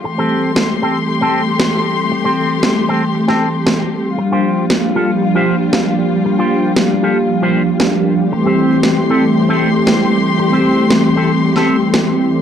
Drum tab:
SD |----o-------o---|----o----o--o---|----o-------o---|----o-------o---|

SD |----o-------o---|----o----o--o---|